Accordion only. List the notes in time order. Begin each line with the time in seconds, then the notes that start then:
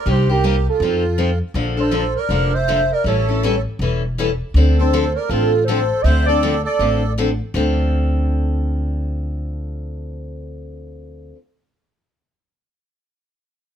0.08 G4
0.31 G4
0.69 F4
1.80 A4
2.16 A#4
2.54 C5
2.92 A#4
3.06 A4
4.78 A4
5.16 A#4
5.29 F4
5.66 A4
6.04 C5
6.27 A4
6.64 A4